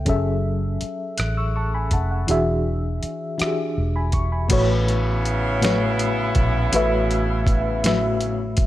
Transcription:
0.06 fingered electric bass F#1, fm electric piano F#3 C#4 G#4 A4 E5, kick, closed hi-hat
0.81 muted fingered electric bass stroke, closed hi-hat
1.18 fingered electric bass A1, fm electric piano F#6, cross-stick, closed hi-hat
1.37 fm electric piano C#6 E6
1.56 fm electric piano A5 C#6
1.74 fm electric piano G#5 B5
1.91 fingered electric bass F1, fm electric piano F#5 A5, kick, closed hi-hat
2.11 fm electric piano F#5
2.27 fingered electric bass E1, fm electric piano E3 D4 F#4 G#4 E5, closed hi-hat
3.03 muted fingered electric bass stroke, closed hi-hat
3.38 fm electric piano E3 D4 F#4 G4 E5, muted fingered electric bass stroke, cross-stick, closed hi-hat
3.47 fm electric piano G#4
3.78 fingered electric bass E1
3.96 fm electric piano G#5 B5
4.12 fm electric piano C#6, kick, closed hi-hat
4.32 fm electric piano G#5 B5
4.49 fingered electric bass A1, fm electric piano A2 A3 F#4 B4, horn section C#3 B3 E4, kick, closed hi-hat, crash
4.53 fm electric piano C#5
4.88 closed hi-hat
5.25 closed hi-hat
5.62 fm electric piano A2 A3 F#4 B4 C#5, snare, closed hi-hat
5.99 closed hi-hat
6.35 fingered electric bass A#1, kick, closed hi-hat
6.72 fingered electric bass A1, fm electric piano A2 A3 F#4 B4 E5, closed hi-hat
7.11 closed hi-hat
7.47 kick, closed hi-hat
7.83 fm electric piano A2 A3 F#4 B4 E5, snare, closed hi-hat
8.21 closed hi-hat
8.57 kick, closed hi-hat

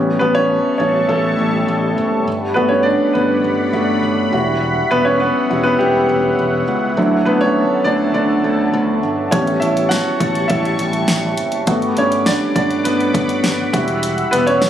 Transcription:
Already playing: picked electric bass A1, grand piano G3 B3 C#4, analog synth pad G3 E5 A5 C#6
0.19 picked electric bass A1, grand piano B3 B4
0.35 grand piano C#4 C#5
0.78 picked electric bass A1, grand piano C#4 C#5
1.09 picked electric bass A1, grand piano A3 A4
1.39 picked electric bass A1
1.68 picked electric bass A1
1.98 picked electric bass F#1
2.26 picked electric bass G1, analog synth pad D5 F#5 B5
2.54 picked electric bass G1, grand piano A3 B3 F#4 B4
2.69 grand piano C#4 C#5
2.83 grand piano D4 D5
3.13 picked electric bass G1, grand piano B3 B4
3.44 picked electric bass G1
3.73 picked electric bass G1, grand piano A3 B3 F#4
4.03 picked electric bass G1
4.32 picked electric bass E1, grand piano G3 E4 F#4, analog synth pad E5 F#5
4.91 picked electric bass E1, grand piano B3 B4
5.05 grand piano C#4 C#5
5.20 grand piano B3 B4
5.50 picked electric bass E1, grand piano G3 E4 F#4
5.63 grand piano B3 B4
5.79 picked electric bass E1, grand piano G3 G4
6.09 picked electric bass E1
6.39 picked electric bass E1
6.68 picked electric bass C#2
6.97 picked electric bass D2, grand piano F#3 D4 E4, analog synth pad A4 A5
7.25 picked electric bass D2, grand piano B3 B4
7.41 grand piano C#4 C#5
7.84 picked electric bass D2, grand piano D4 D5
8.14 picked electric bass D2, grand piano D4 D5
8.44 picked electric bass D2
8.74 picked electric bass D2
9.03 picked electric bass G1
9.31 picked electric bass A1, grand piano G3 B3 C#4 C#5, analog synth pad G3 A5 C#6, kick, closed hi-hat
9.47 closed hi-hat
9.60 picked electric bass A1, grand piano E4 E5, closed hi-hat
9.77 closed hi-hat
9.89 grand piano F#4 F#5, snare, closed hi-hat
10.20 picked electric bass A1, kick, closed hi-hat
10.35 closed hi-hat
10.48 picked electric bass A1, grand piano E4 E5, kick, closed hi-hat
10.65 closed hi-hat
10.79 picked electric bass A1, closed hi-hat
10.93 closed hi-hat
11.08 picked electric bass A1, snare, closed hi-hat
11.37 picked electric bass F#1, closed hi-hat
11.52 closed hi-hat
11.67 picked electric bass G1, grand piano A3 B3 F#4, analog synth pad F#5 B5 D6, kick, closed hi-hat
11.82 closed hi-hat
11.97 picked electric bass G1, grand piano C#4 C#5, closed hi-hat
12.12 closed hi-hat
12.26 grand piano D4 D5, snare, closed hi-hat
12.55 picked electric bass G1, grand piano D4 D5, kick, closed hi-hat
12.71 closed hi-hat
12.84 picked electric bass G1, grand piano B3 B4, closed hi-hat
13.00 closed hi-hat
13.14 picked electric bass G1, kick, closed hi-hat
13.29 closed hi-hat
13.44 picked electric bass G1, snare, closed hi-hat
13.72 picked electric bass E1, grand piano G3 E4 F#4, analog synth pad E6, kick, closed hi-hat
13.88 closed hi-hat
14.03 closed hi-hat
14.18 closed hi-hat
14.31 picked electric bass E1, grand piano B3 B4, closed hi-hat
14.47 grand piano C#4 C#5, closed hi-hat
14.62 snare, closed hi-hat

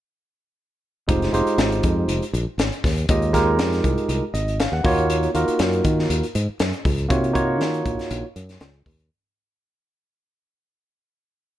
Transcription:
1.08 fingered electric bass F1, tine electric piano G#3 D#4 F4 G4 C5, kick, closed hi-hat
1.22 snare, closed hi-hat
1.33 fingered electric bass F1, tine electric piano G#3 D#4 F4 G4 C5, closed hi-hat
1.46 muted fingered electric bass stroke, closed hi-hat
1.58 fingered electric bass G#1, snare, closed hi-hat
1.72 closed hi-hat
1.83 fingered electric bass F2, kick, closed hi-hat
2.08 fingered electric bass F1, closed hi-hat
2.22 closed hi-hat
2.33 fingered electric bass A#1, closed hi-hat
2.46 muted fingered electric bass stroke
2.58 fingered electric bass G#1, snare, closed hi-hat
2.72 closed hi-hat
2.84 fingered electric bass D#2, kick, snare, open hi-hat
2.98 closed hi-hat
3.09 fingered electric bass D#2, tine electric piano G#3 D#4 F4 G4 D#5, kick, closed hi-hat
3.22 closed hi-hat
3.33 tine electric piano G#3 D#4 F4 G4 A#4, kick, snare, closed hi-hat
3.59 fingered electric bass F2, snare, closed hi-hat
3.73 snare, closed hi-hat
3.84 fingered electric bass C2, kick, closed hi-hat
3.98 closed hi-hat
4.09 fingered electric bass C2, closed hi-hat
4.34 fingered electric bass G#1, tine electric piano D#5, closed hi-hat
4.48 closed hi-hat
4.60 tine electric piano F5, snare, closed hi-hat
4.72 fingered electric bass D#2, tine electric piano F#5
4.84 fingered electric bass D#2, tine electric piano A#3 D#4 F4 F#4 C#5, kick, open hi-hat
4.98 closed hi-hat
5.10 closed hi-hat
5.23 closed hi-hat
5.34 fingered electric bass D#2, tine electric piano A#3 D#4 F4 F#4 A#4, closed hi-hat
5.48 muted fingered electric bass stroke, closed hi-hat
5.59 fingered electric bass F#2, snare, closed hi-hat
5.73 closed hi-hat
5.84 fingered electric bass D#3, kick, closed hi-hat
5.99 snare
6.10 fingered electric bass D#2, closed hi-hat
6.23 closed hi-hat
6.35 fingered electric bass G#2, closed hi-hat
6.49 muted fingered electric bass stroke
6.60 fingered electric bass F#2, snare, closed hi-hat
6.73 closed hi-hat
6.85 fingered electric bass C#2, kick, open hi-hat
6.99 closed hi-hat
7.08 fingered electric bass C3, tine electric piano A#3 D#4 F4 F#4 C#5, kick, closed hi-hat
7.24 closed hi-hat
7.33 tine electric piano A#3 D#4 F4 F#4 C#5, kick, closed hi-hat
7.60 fingered electric bass D#3, snare, closed hi-hat
7.74 closed hi-hat
7.85 fingered electric bass A#1, kick, closed hi-hat
7.99 snare, closed hi-hat
8.11 fingered electric bass A#1, closed hi-hat
8.36 fingered electric bass F#2, closed hi-hat
8.49 snare, closed hi-hat
8.61 fingered electric bass C#2, snare, closed hi-hat
8.86 fingered electric bass D#2, kick, open hi-hat
8.99 closed hi-hat

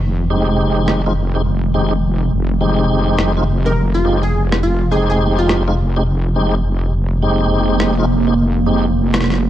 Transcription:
Already playing: wobble bass F1, ambient pad D#3 G#3
0.30 tonewheel organ G#3 C4 D#4 G4
0.88 cross-stick
1.06 tonewheel organ G#3 C4 D#4 F4
1.35 tonewheel organ G#3 C4 D#4 G4
1.74 tonewheel organ G#3 C4 D#4 G4
2.32 wobble bass F1, ambient pad G4
2.61 tonewheel organ G#3 C4 D#4 G4
3.19 cross-stick
3.37 tonewheel organ G#3 C4 D#4 F4
3.66 tonewheel organ G#3 C4 D#4 G4, digital synth lead A#4
3.94 digital synth lead F4
4.05 tonewheel organ G#3 C4 D#4 G4
4.23 digital synth lead G#4
4.52 cross-stick
4.63 digital synth lead F4
4.91 tonewheel organ G#3 C4 D#4 G4, digital synth lead G#4
5.10 digital synth lead G#4
5.38 digital synth lead F4
5.49 cross-stick
5.68 tonewheel organ G#3 C4 D#4 F4
5.96 tonewheel organ G#3 C4 D#4 G4
6.36 tonewheel organ G#3 C4 D#4 G4
6.94 ambient pad A#3
7.22 tonewheel organ G#3 C4 D#4 G4
7.80 cross-stick
7.98 tonewheel organ G#3 C4 D#4 F4
8.27 tonewheel organ G#3 C4 D#4 G4
8.66 tonewheel organ G#3 C4 D#4 G4
9.14 cross-stick
9.21 cross-stick
9.24 cross-stick
9.30 cross-stick
9.34 cross-stick

